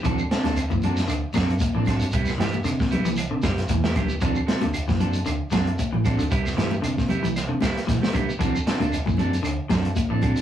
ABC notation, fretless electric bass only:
X:1
M:4/4
L:1/16
Q:"Swing 16ths" 1/4=115
K:Dmix
V:1 name="Fretless electric bass" clef=bass
D,,2 z D,,2 F,,3 D,, z F,,2 z A,,,2 G,, | C,,2 G,,2 C,3 C,,2 C, F,,2 E,,2 z2 | D,,2 z D,,2 F,,3 D,, z F,,2 z A,,,2 D,, | C,,2 G,,2 C,3 C,,2 C, z2 B,,, z C,, z |
D,,2 z D,,2 F,,3 D,, z F,,2 z A,,,2 D, |]